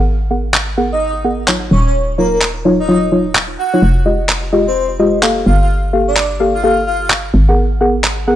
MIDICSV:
0, 0, Header, 1, 5, 480
1, 0, Start_track
1, 0, Tempo, 468750
1, 75, Time_signature, 4, 2, 24, 8
1, 8556, End_track
2, 0, Start_track
2, 0, Title_t, "Digital synth lead"
2, 0, Program_c, 0, 84
2, 946, Note_on_c, 0, 75, 90
2, 1134, Note_off_c, 0, 75, 0
2, 1756, Note_on_c, 0, 73, 82
2, 1852, Note_off_c, 0, 73, 0
2, 1907, Note_on_c, 0, 73, 75
2, 1963, Note_off_c, 0, 73, 0
2, 2235, Note_on_c, 0, 70, 85
2, 2332, Note_off_c, 0, 70, 0
2, 2386, Note_on_c, 0, 70, 73
2, 2442, Note_off_c, 0, 70, 0
2, 2866, Note_on_c, 0, 75, 89
2, 3054, Note_off_c, 0, 75, 0
2, 3674, Note_on_c, 0, 78, 91
2, 3975, Note_off_c, 0, 78, 0
2, 4786, Note_on_c, 0, 72, 91
2, 4974, Note_off_c, 0, 72, 0
2, 5595, Note_on_c, 0, 77, 83
2, 5692, Note_off_c, 0, 77, 0
2, 5746, Note_on_c, 0, 77, 75
2, 5802, Note_off_c, 0, 77, 0
2, 6225, Note_on_c, 0, 74, 89
2, 6413, Note_off_c, 0, 74, 0
2, 6704, Note_on_c, 0, 77, 88
2, 6762, Note_off_c, 0, 77, 0
2, 6793, Note_on_c, 0, 77, 75
2, 6891, Note_off_c, 0, 77, 0
2, 7033, Note_on_c, 0, 77, 88
2, 7131, Note_off_c, 0, 77, 0
2, 7186, Note_on_c, 0, 77, 75
2, 7242, Note_off_c, 0, 77, 0
2, 8556, End_track
3, 0, Start_track
3, 0, Title_t, "Synth stab"
3, 0, Program_c, 1, 62
3, 0, Note_on_c, 1, 59, 75
3, 0, Note_on_c, 1, 68, 70
3, 0, Note_on_c, 1, 70, 68
3, 0, Note_on_c, 1, 78, 81
3, 154, Note_off_c, 1, 59, 0
3, 154, Note_off_c, 1, 68, 0
3, 154, Note_off_c, 1, 70, 0
3, 154, Note_off_c, 1, 78, 0
3, 314, Note_on_c, 1, 59, 73
3, 314, Note_on_c, 1, 68, 66
3, 314, Note_on_c, 1, 70, 67
3, 314, Note_on_c, 1, 78, 82
3, 459, Note_off_c, 1, 59, 0
3, 459, Note_off_c, 1, 68, 0
3, 459, Note_off_c, 1, 70, 0
3, 459, Note_off_c, 1, 78, 0
3, 794, Note_on_c, 1, 59, 94
3, 794, Note_on_c, 1, 68, 88
3, 794, Note_on_c, 1, 70, 87
3, 794, Note_on_c, 1, 78, 106
3, 939, Note_off_c, 1, 59, 0
3, 939, Note_off_c, 1, 68, 0
3, 939, Note_off_c, 1, 70, 0
3, 939, Note_off_c, 1, 78, 0
3, 1274, Note_on_c, 1, 59, 93
3, 1274, Note_on_c, 1, 68, 84
3, 1274, Note_on_c, 1, 70, 83
3, 1275, Note_on_c, 1, 78, 104
3, 1472, Note_off_c, 1, 59, 0
3, 1472, Note_off_c, 1, 68, 0
3, 1472, Note_off_c, 1, 70, 0
3, 1473, Note_off_c, 1, 78, 0
3, 1514, Note_on_c, 1, 54, 82
3, 1514, Note_on_c, 1, 63, 77
3, 1514, Note_on_c, 1, 65, 77
3, 1514, Note_on_c, 1, 73, 89
3, 2213, Note_off_c, 1, 54, 0
3, 2213, Note_off_c, 1, 63, 0
3, 2213, Note_off_c, 1, 65, 0
3, 2213, Note_off_c, 1, 73, 0
3, 2234, Note_on_c, 1, 54, 74
3, 2234, Note_on_c, 1, 63, 69
3, 2234, Note_on_c, 1, 65, 68
3, 2234, Note_on_c, 1, 73, 84
3, 2432, Note_off_c, 1, 54, 0
3, 2432, Note_off_c, 1, 63, 0
3, 2432, Note_off_c, 1, 65, 0
3, 2432, Note_off_c, 1, 73, 0
3, 2714, Note_on_c, 1, 54, 93
3, 2714, Note_on_c, 1, 63, 89
3, 2714, Note_on_c, 1, 65, 86
3, 2714, Note_on_c, 1, 73, 106
3, 2859, Note_off_c, 1, 54, 0
3, 2859, Note_off_c, 1, 63, 0
3, 2859, Note_off_c, 1, 65, 0
3, 2859, Note_off_c, 1, 73, 0
3, 2954, Note_on_c, 1, 54, 93
3, 2954, Note_on_c, 1, 63, 84
3, 2954, Note_on_c, 1, 65, 85
3, 2954, Note_on_c, 1, 73, 102
3, 3152, Note_off_c, 1, 54, 0
3, 3152, Note_off_c, 1, 63, 0
3, 3152, Note_off_c, 1, 65, 0
3, 3152, Note_off_c, 1, 73, 0
3, 3194, Note_on_c, 1, 54, 77
3, 3194, Note_on_c, 1, 63, 68
3, 3194, Note_on_c, 1, 65, 71
3, 3194, Note_on_c, 1, 73, 85
3, 3339, Note_off_c, 1, 54, 0
3, 3339, Note_off_c, 1, 63, 0
3, 3339, Note_off_c, 1, 65, 0
3, 3339, Note_off_c, 1, 73, 0
3, 3825, Note_on_c, 1, 54, 84
3, 3825, Note_on_c, 1, 63, 79
3, 3825, Note_on_c, 1, 65, 79
3, 3825, Note_on_c, 1, 73, 96
3, 3903, Note_off_c, 1, 54, 0
3, 3903, Note_off_c, 1, 63, 0
3, 3903, Note_off_c, 1, 65, 0
3, 3903, Note_off_c, 1, 73, 0
3, 4154, Note_on_c, 1, 56, 71
3, 4154, Note_on_c, 1, 65, 67
3, 4154, Note_on_c, 1, 67, 67
3, 4154, Note_on_c, 1, 75, 83
3, 4299, Note_off_c, 1, 56, 0
3, 4299, Note_off_c, 1, 65, 0
3, 4299, Note_off_c, 1, 67, 0
3, 4299, Note_off_c, 1, 75, 0
3, 4633, Note_on_c, 1, 67, 86
3, 4634, Note_on_c, 1, 56, 99
3, 4634, Note_on_c, 1, 65, 90
3, 4634, Note_on_c, 1, 75, 106
3, 4779, Note_off_c, 1, 56, 0
3, 4779, Note_off_c, 1, 65, 0
3, 4779, Note_off_c, 1, 67, 0
3, 4779, Note_off_c, 1, 75, 0
3, 5114, Note_on_c, 1, 56, 91
3, 5114, Note_on_c, 1, 65, 86
3, 5114, Note_on_c, 1, 67, 85
3, 5114, Note_on_c, 1, 75, 105
3, 5312, Note_off_c, 1, 56, 0
3, 5312, Note_off_c, 1, 65, 0
3, 5312, Note_off_c, 1, 67, 0
3, 5313, Note_off_c, 1, 75, 0
3, 5354, Note_on_c, 1, 58, 82
3, 5354, Note_on_c, 1, 67, 76
3, 5354, Note_on_c, 1, 69, 75
3, 5354, Note_on_c, 1, 77, 94
3, 6053, Note_off_c, 1, 58, 0
3, 6053, Note_off_c, 1, 67, 0
3, 6053, Note_off_c, 1, 69, 0
3, 6053, Note_off_c, 1, 77, 0
3, 6074, Note_on_c, 1, 58, 75
3, 6074, Note_on_c, 1, 67, 71
3, 6074, Note_on_c, 1, 69, 69
3, 6074, Note_on_c, 1, 77, 82
3, 6272, Note_off_c, 1, 67, 0
3, 6272, Note_off_c, 1, 69, 0
3, 6272, Note_off_c, 1, 77, 0
3, 6273, Note_off_c, 1, 58, 0
3, 6554, Note_on_c, 1, 58, 96
3, 6554, Note_on_c, 1, 67, 88
3, 6554, Note_on_c, 1, 69, 87
3, 6554, Note_on_c, 1, 77, 105
3, 6699, Note_off_c, 1, 58, 0
3, 6699, Note_off_c, 1, 67, 0
3, 6699, Note_off_c, 1, 69, 0
3, 6699, Note_off_c, 1, 77, 0
3, 6794, Note_on_c, 1, 58, 95
3, 6794, Note_on_c, 1, 69, 87
3, 6794, Note_on_c, 1, 77, 105
3, 6795, Note_on_c, 1, 67, 86
3, 6992, Note_off_c, 1, 58, 0
3, 6992, Note_off_c, 1, 69, 0
3, 6992, Note_off_c, 1, 77, 0
3, 6993, Note_off_c, 1, 67, 0
3, 7666, Note_on_c, 1, 59, 77
3, 7666, Note_on_c, 1, 68, 70
3, 7666, Note_on_c, 1, 70, 69
3, 7666, Note_on_c, 1, 78, 87
3, 7834, Note_off_c, 1, 59, 0
3, 7834, Note_off_c, 1, 68, 0
3, 7834, Note_off_c, 1, 70, 0
3, 7834, Note_off_c, 1, 78, 0
3, 7994, Note_on_c, 1, 68, 70
3, 7994, Note_on_c, 1, 70, 69
3, 7994, Note_on_c, 1, 78, 85
3, 7995, Note_on_c, 1, 59, 76
3, 8139, Note_off_c, 1, 59, 0
3, 8139, Note_off_c, 1, 68, 0
3, 8139, Note_off_c, 1, 70, 0
3, 8139, Note_off_c, 1, 78, 0
3, 8474, Note_on_c, 1, 59, 94
3, 8474, Note_on_c, 1, 68, 88
3, 8474, Note_on_c, 1, 78, 110
3, 8475, Note_on_c, 1, 70, 88
3, 8556, Note_off_c, 1, 59, 0
3, 8556, Note_off_c, 1, 68, 0
3, 8556, Note_off_c, 1, 70, 0
3, 8556, Note_off_c, 1, 78, 0
3, 8556, End_track
4, 0, Start_track
4, 0, Title_t, "FM bass"
4, 0, Program_c, 2, 39
4, 0, Note_on_c, 2, 32, 88
4, 1736, Note_off_c, 2, 32, 0
4, 1753, Note_on_c, 2, 27, 88
4, 3656, Note_off_c, 2, 27, 0
4, 3915, Note_on_c, 2, 29, 85
4, 5577, Note_off_c, 2, 29, 0
4, 5595, Note_on_c, 2, 31, 89
4, 7497, Note_off_c, 2, 31, 0
4, 7514, Note_on_c, 2, 32, 89
4, 8556, Note_off_c, 2, 32, 0
4, 8556, End_track
5, 0, Start_track
5, 0, Title_t, "Drums"
5, 553, Note_on_c, 9, 39, 119
5, 656, Note_off_c, 9, 39, 0
5, 1514, Note_on_c, 9, 39, 118
5, 1616, Note_off_c, 9, 39, 0
5, 2473, Note_on_c, 9, 39, 120
5, 2576, Note_off_c, 9, 39, 0
5, 3434, Note_on_c, 9, 39, 116
5, 3536, Note_off_c, 9, 39, 0
5, 4394, Note_on_c, 9, 39, 114
5, 4496, Note_off_c, 9, 39, 0
5, 5354, Note_on_c, 9, 39, 112
5, 5457, Note_off_c, 9, 39, 0
5, 6314, Note_on_c, 9, 39, 110
5, 6416, Note_off_c, 9, 39, 0
5, 7274, Note_on_c, 9, 39, 108
5, 7376, Note_off_c, 9, 39, 0
5, 8234, Note_on_c, 9, 39, 113
5, 8336, Note_off_c, 9, 39, 0
5, 8556, End_track
0, 0, End_of_file